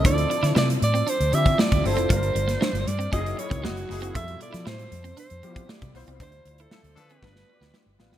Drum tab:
HH |xxxx-xxxxxxx-xox|xxxx-xxxxxxx-xox|xxxx-xxxxxxx-xox|xxxx-xxx--------|
SD |---oo-------o---|---oo-------o-o-|---oo-------o-o-|----o---oo-oo-oo|
BD |o----------o-o--|o-------o--o----|o----------o-o--|o-------o-------|